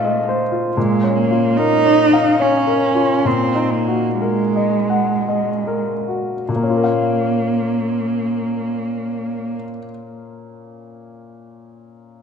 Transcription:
Already playing: grand piano A#2 D#4 F4 C5 D#5 F5, cello A3
0.05 grand piano D#5
0.29 grand piano C5
0.52 grand piano F4
0.75 grand piano A#2, cello G#3
1.04 grand piano C#4
1.16 cello A#3
1.31 grand piano F4
1.56 cello D#4, grand piano A#4
1.86 grand piano C#5
2.13 grand piano F5
2.40 cello C#4, grand piano C#5
2.67 grand piano A#4
2.95 grand piano F4
3.25 grand piano A#2, cello C4
3.55 grand piano D#4
3.71 cello A#3
3.88 grand piano F#4
4.20 cello G#3, grand piano A#4
4.56 grand piano D#5
4.90 grand piano F#5
5.28 grand piano D#5
5.67 grand piano A#4
6.08 grand piano F#4
6.49 grand piano A#2, cello A#3
6.56 grand piano A#3
6.63 grand piano C#4
6.70 grand piano F4
6.77 grand piano A#4
6.84 grand piano F5

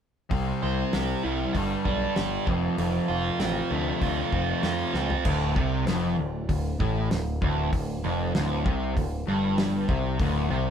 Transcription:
0.31 picked electric bass C2, distorted electric guitar C3, overdriven electric guitar G3 C4, kick, open hi-hat
0.62 picked electric bass C2, distorted electric guitar C5
0.93 picked electric bass C2, distorted electric guitar G4, snare, open hi-hat
1.23 picked electric bass C2, distorted electric guitar E4
1.54 picked electric bass G1, distorted electric guitar G2, overdriven electric guitar D3 G3, kick, open hi-hat
1.85 picked electric bass B1, distorted electric guitar D4, kick
2.16 picked electric bass G1, distorted electric guitar G4, snare, open hi-hat
2.47 picked electric bass F1, distorted electric guitar F2, overdriven electric guitar C3 F3, kick
2.78 picked electric bass F1, distorted electric guitar F2, open hi-hat
3.08 picked electric bass F1, distorted electric guitar F4
3.40 picked electric bass A1, distorted electric guitar C4, snare, open hi-hat
3.70 picked electric bass D2, distorted electric guitar A3
4.02 picked electric bass D2, distorted electric guitar F4, kick, open hi-hat
4.32 picked electric bass F1, distorted electric guitar C4, kick
4.63 overdriven electric guitar F2 C3 F3, picked electric bass F2, distorted electric guitar F4, snare, open hi-hat
4.93 picked electric bass C#2, distorted electric guitar C4, snare
5.10 floor tom
5.24 picked electric bass D1, distorted electric guitar D2, kick, crash
5.56 picked electric bass C2, distorted electric guitar C3, kick
5.87 picked electric bass F1, distorted electric guitar F2, snare, open hi-hat
6.18 picked electric bass D1, distorted electric guitar D2
6.49 picked electric bass D1, distorted electric guitar D2, kick, open hi-hat
6.80 picked electric bass A1, distorted electric guitar A2, kick
7.11 picked electric bass D1, distorted electric guitar D2, snare, open hi-hat
7.42 picked electric bass D1, distorted electric guitar D2, kick
7.72 picked electric bass D1, distorted electric guitar D2, kick, open hi-hat
8.04 picked electric bass F1, distorted electric guitar F2
8.35 picked electric bass D1, distorted electric guitar D2, snare, open hi-hat
8.66 picked electric bass C2, distorted electric guitar C3, kick
8.97 picked electric bass D1, distorted electric guitar D2, kick, open hi-hat
9.27 picked electric bass G1, distorted electric guitar G2
9.58 snare, open hi-hat
9.89 picked electric bass C2, distorted electric guitar C3, kick
10.19 picked electric bass D1, distorted electric guitar D2, kick, open hi-hat
10.50 picked electric bass C2, distorted electric guitar C3

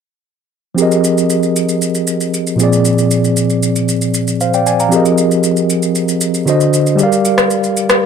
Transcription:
0.75 tine electric piano F3 C4 G4, shaker
0.79 tine electric piano G#4 A#4 D#5
0.92 shaker
1.04 shaker
1.18 shaker
1.30 shaker
1.43 shaker
1.56 shaker
1.69 shaker
1.82 shaker
1.95 shaker
2.07 shaker
2.21 shaker
2.34 shaker
2.47 shaker
2.56 tine electric piano A#2 F3 C4, shaker
2.61 tine electric piano G#4 D5
2.73 shaker
2.85 shaker
2.98 shaker
3.11 shaker
3.24 shaker
3.37 shaker
3.50 shaker
3.63 shaker
3.76 shaker
3.88 shaker
4.02 shaker
4.14 shaker
4.27 shaker
4.41 tine electric piano C5 F5, shaker
4.54 tine electric piano D5 G5, shaker
4.67 tine electric piano D5 G#5, shaker
4.80 tine electric piano F5 A#5, shaker
4.88 tine electric piano F3 C4 G4, shaker
4.93 tine electric piano G#4 A#4 D#5
5.05 shaker
5.18 shaker
5.31 shaker
5.43 shaker
5.57 shaker
5.70 shaker
5.83 shaker
5.95 shaker
6.08 shaker
6.21 shaker
6.34 shaker
6.46 tine electric piano D3 D4 F#4 C5 D#5, shaker
6.61 shaker
6.73 shaker
6.87 shaker
6.95 tine electric piano G3 G4 G#4, shaker
7.01 tine electric piano D5 F5
7.05 tine electric piano A#4
7.12 shaker
7.25 shaker
7.38 cross-stick, shaker
7.50 shaker
7.64 shaker
7.77 shaker
7.90 cross-stick, shaker

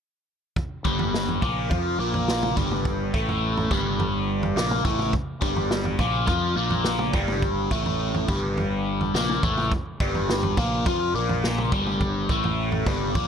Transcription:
0.56 kick, floor tom
0.84 fingered electric bass G1, overdriven electric guitar G2 G3, kick
0.99 floor tom
1.14 snare
1.29 floor tom
1.42 fingered electric bass A#1, overdriven electric guitar A#2 A#3, kick, mid tom
1.70 fingered electric bass F2, overdriven electric guitar F3 F4, kick, floor tom
1.99 fingered electric bass A#1, overdriven electric guitar A#2 A#3
2.14 floor tom
2.28 snare
2.43 mid tom
2.56 fingered electric bass G1, overdriven electric guitar G2 G3, kick, floor tom
2.71 mid tom
2.85 kick, floor tom
3.14 fingered electric bass A1, overdriven electric guitar A2 A3, kick
3.29 floor tom
3.57 floor tom
3.71 fingered electric bass G1, overdriven electric guitar G2 G3, kick, mid tom
4.00 floor tom
4.43 floor tom
4.56 fingered electric bass A#1, overdriven electric guitar A#2 A#3, snare, mid tom
4.71 mid tom
4.85 fingered electric bass A1, overdriven electric guitar A2 A3, kick, floor tom
4.99 mid tom
5.13 kick, floor tom
5.41 fingered electric bass G1, overdriven electric guitar G2 G3, kick
5.56 floor tom
5.71 snare
5.85 floor tom
5.99 fingered electric bass A#1, overdriven electric guitar A#2 A#3, kick, mid tom
6.27 fingered electric bass F2, overdriven electric guitar F3 F4, kick, floor tom
6.56 fingered electric bass A#1, overdriven electric guitar A#2 A#3
6.70 floor tom
6.84 snare
6.99 mid tom
7.13 fingered electric bass G1, overdriven electric guitar G2 G3, kick, floor tom
7.28 mid tom
7.42 kick, floor tom
7.70 fingered electric bass A1, overdriven electric guitar A2 A3, kick
7.86 floor tom
8.14 floor tom
8.28 fingered electric bass G1, overdriven electric guitar G2 G3, kick, mid tom
8.57 floor tom
9.01 floor tom
9.14 fingered electric bass A#1, overdriven electric guitar A#2 A#3, snare, mid tom
9.29 mid tom
9.43 fingered electric bass A1, overdriven electric guitar A2 A3, kick, floor tom
9.57 mid tom
9.72 kick, floor tom
10.00 fingered electric bass G1, overdriven electric guitar G2 G3, kick
10.15 floor tom
10.29 snare
10.43 floor tom
10.57 fingered electric bass A#1, overdriven electric guitar A#2 A#3, kick, mid tom
10.86 fingered electric bass F2, overdriven electric guitar F3 F4, kick, floor tom
11.14 fingered electric bass A#1, overdriven electric guitar A#2 A#3
11.29 floor tom
11.44 snare
11.58 mid tom
11.72 fingered electric bass G1, overdriven electric guitar G2 G3, kick, floor tom
11.86 mid tom
12.01 kick, floor tom
12.29 fingered electric bass A1, overdriven electric guitar A2 A3, kick
12.44 floor tom
12.72 floor tom
12.86 fingered electric bass G1, overdriven electric guitar G2 G3, kick, mid tom
13.15 fingered electric bass A#1, overdriven electric guitar A#2 A#3, kick, floor tom

